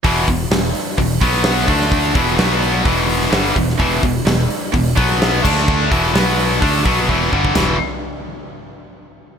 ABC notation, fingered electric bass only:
X:1
M:4/4
L:1/8
Q:1/4=128
K:Em
V:1 name="Fingered electric bass" clef=bass
E,,, E,,, E,,, z E,,, B,,,2 D,,- | D,, E,,, B,,,2 E,,,2 G,,, E,,, | E,,, E,,, E,,, z E,,, B,,,2 D,,- | D,, E,,, B,,,2 D,, B,,, E,,, G,,, |
E,,, z6 z |]